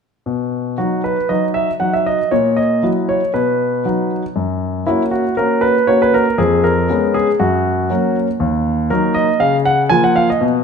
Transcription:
0.26 B2
0.78 F#3 D#4 F#4
1.04 B4
1.29 F#3 D#4 F#4 D#5
1.54 E5
1.80 F#3 D#4 F#4 F#5
1.93 E5
2.06 D#5
2.31 A#2 C#5
2.56 D#5
2.83 F#3 E4 F#4
3.09 C#5
3.34 B2 B4
3.85 F#3 D#4 F#4
4.36 F#2
4.87 A#3 C#4 E4 F#4
5.11 F#4
5.37 A#3 C#4 F#4 A#4
5.61 B4
5.87 A#3 C#4 F#4 C#5
6.02 B4
6.14 A#4
6.38 F2 G#4
6.64 A#4
6.90 G#3 B3 C#4
7.14 G#4
7.40 F#2 F#4
7.90 F#3 A#3 C#4
8.40 D#2
8.90 F#3 A#3 D#4 A#4
9.14 D#5
9.40 C#3 F5
9.65 F#5
9.89 F3 A#3 F4 G#5
10.04 F#5
10.16 F5
10.30 D#5
10.41 B2

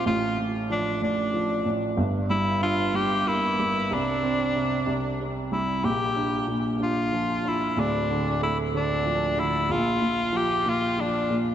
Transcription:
0.06 A1 A2 F4
0.38 A2
0.70 F3 D4
1.02 A2 D4
1.34 F3
1.66 A2
1.97 G1 G2
2.30 G3 E4
2.62 D4 F4
2.94 G3 G4
3.26 A#3 E4
3.59 G3
3.91 C2 C3 D4
4.23 C4
4.55 C3
4.87 C2 C3
5.20 C3
5.52 G3 E4
5.84 A#1 A#2 G4
6.16 D4
6.48 A#2
6.80 D4 F4
7.12 F3
7.45 D4 E4
7.77 D1 D2 D4
8.10 D3
8.42 A3 E4
8.74 D3 D4
9.06 F3
9.38 D3 E4
9.69 A#1 A#2 F4
10.02 A#2
10.33 F3 G4
10.66 A#2 F4
10.98 F3 D4
11.30 A#2

